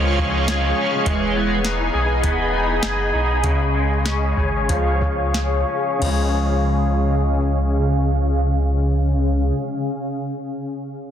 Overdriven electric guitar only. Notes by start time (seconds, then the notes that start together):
Already playing: F3 G#3 C#4 F4
0.47 F3 G#3 C#4
0.51 F4